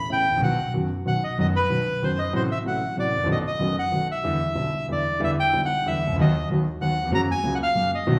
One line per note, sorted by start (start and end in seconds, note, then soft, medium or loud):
0.09 0.23 A1 medium
0.09 0.23 A2 medium
0.09 0.23 C#3 soft
0.09 0.23 A3 soft
0.09 0.23 B3 soft
0.09 0.24 E4 medium
0.09 0.41 G5 medium
0.30 0.34 G#1 soft
0.30 0.38 A1 medium
0.37 0.42 A#1 medium
0.37 0.55 B1 medium
0.37 0.55 D#3 medium
0.41 0.55 B2 medium
0.41 0.55 F#3 medium
0.41 0.55 B3 medium
0.41 0.55 F#4 medium
0.41 0.73 F#5 medium
0.74 0.88 F#1 medium
0.74 0.88 F#2 medium
0.74 0.87 D#3 medium
0.74 0.88 F#3 soft
0.74 0.88 B3 soft
0.74 0.88 F#4 medium
1.06 1.20 B1 medium
1.06 1.20 B2 medium
1.06 1.20 D#3 soft
1.06 1.19 F#3 soft
1.06 1.20 B3 soft
1.06 1.20 F#4 soft
1.06 1.24 F#5 medium
1.24 1.38 D#5 medium
1.38 1.52 F#1 medium
1.38 1.52 F#2 medium
1.38 1.52 D#3 medium
1.38 1.52 F#3 medium
1.38 1.52 B3 medium
1.38 1.52 F#4 medium
1.38 1.47 D#5 medium
1.56 2.05 B4 loud
1.70 1.84 B1 medium
1.70 1.84 B2 medium
1.70 1.84 D#3 soft
1.70 1.84 F#3 soft
1.70 1.84 B3 soft
1.70 1.84 F#4 medium
2.02 2.16 F#1 medium
2.02 2.16 F#2 medium
2.02 2.16 D#3 soft
2.02 2.16 F#3 soft
2.02 2.16 B3 soft
2.02 2.16 F#4 soft
2.02 2.20 C5 medium
2.19 2.33 D#5 medium
2.33 2.47 A1 medium
2.33 2.47 A2 medium
2.33 2.47 C3 medium
2.33 2.47 F#3 medium
2.33 2.47 A3 medium
2.33 2.47 F#4 medium
2.33 2.43 C5 medium
2.52 2.58 E5 medium
2.65 2.79 A1 medium
2.65 2.79 A2 medium
2.65 2.79 C3 medium
2.65 2.79 F#3 medium
2.65 2.79 A3 soft
2.65 2.79 F#4 medium
2.65 2.96 F#5 medium
2.97 3.11 A1 medium
2.97 3.11 A2 medium
2.97 3.11 C3 soft
2.97 3.11 F#3 soft
2.97 3.11 A3 soft
2.97 3.11 F#4 medium
2.97 3.28 D5 medium
3.16 3.21 G#1 soft
3.21 3.25 A1 medium
3.21 3.29 A#1 medium
3.26 3.41 B1 medium
3.26 3.41 B2 medium
3.26 3.41 D#3 medium
3.26 3.41 A3 medium
3.26 3.41 B3 medium
3.26 3.41 F#4 medium
3.32 3.38 D#5 medium
3.47 3.76 D#5 medium
3.59 3.74 F#1 medium
3.59 3.74 F#2 medium
3.59 3.74 D#3 medium
3.59 3.74 A3 soft
3.59 3.74 B3 soft
3.59 3.74 F#4 medium
3.79 4.08 F#5 loud
3.92 4.06 B1 medium
3.92 4.06 B2 medium
3.92 4.06 D#3 soft
3.92 4.06 A3 soft
3.92 4.06 B3 soft
3.92 4.06 F#4 medium
4.12 4.87 E5 medium
4.24 4.38 E2 medium
4.24 4.38 D3 medium
4.24 4.38 E3 medium
4.24 4.38 G3 medium
4.24 4.38 B3 medium
4.24 4.38 E4 medium
4.55 4.70 B1 medium
4.55 4.70 B2 medium
4.55 4.69 D3 medium
4.55 4.69 G3 soft
4.55 4.70 B3 medium
4.55 4.70 E4 medium
4.88 5.02 E2 medium
4.88 5.02 D3 soft
4.88 5.02 E3 medium
4.88 5.02 G3 soft
4.88 5.03 B3 soft
4.88 5.03 E4 medium
4.92 5.21 D5 medium
5.20 5.34 E2 medium
5.20 5.34 D3 medium
5.20 5.34 E3 medium
5.20 5.34 G3 medium
5.20 5.34 B3 medium
5.20 5.35 E4 medium
5.24 5.31 E5 medium
5.40 5.61 G5 loud
5.53 5.67 B1 medium
5.53 5.67 B2 medium
5.53 5.67 D3 medium
5.53 5.67 G3 soft
5.53 5.67 B3 soft
5.53 5.67 E4 medium
5.65 5.88 F#5 loud
5.86 5.99 E2 medium
5.86 5.99 D3 medium
5.86 5.99 E3 medium
5.86 6.00 G3 soft
5.86 6.00 B3 medium
5.86 6.00 E4 medium
5.86 6.16 E5 medium
6.07 6.10 C2 medium
6.11 6.15 C#2 medium
6.16 6.19 D2 medium
6.16 6.32 D#2 loud
6.16 6.32 D#3 loud
6.16 6.32 F#3 medium
6.16 6.32 B3 medium
6.16 6.32 F#4 medium
6.21 6.49 D#5 medium
6.50 6.64 D#2 medium
6.50 6.63 D#3 medium
6.50 6.63 F#3 soft
6.50 6.63 B3 medium
6.50 6.64 F#4 medium
6.81 6.95 D#2 medium
6.81 6.94 D#3 medium
6.81 6.95 F#3 medium
6.81 6.95 B3 medium
6.81 6.95 F#4 medium
6.81 7.11 F#5 loud
7.02 7.05 D#2 medium
7.02 7.09 E2 medium
7.09 7.13 F2 medium
7.09 7.26 F#2 medium
7.09 7.25 C#3 medium
7.09 7.26 F#3 medium
7.09 7.26 A#3 medium
7.09 7.26 F#4 medium
7.15 7.21 A#5 loud
7.31 7.54 G#5 loud
7.44 7.57 C#2 medium
7.44 7.57 C#3 medium
7.44 7.57 F#3 medium
7.44 7.57 A#3 medium
7.44 7.58 F#4 medium
7.55 7.58 F#5 medium
7.63 7.91 F5 loud
7.75 7.89 F#2 medium
7.75 7.89 C#3 medium
7.75 7.89 F#3 medium
7.75 7.89 A#3 soft
7.75 7.89 F#4 medium
7.95 8.19 D#5 medium
8.07 8.19 B1 medium
8.07 8.19 B2 medium
8.07 8.19 D#3 medium
8.07 8.19 F#3 medium
8.07 8.19 B3 medium
8.07 8.19 F#4 medium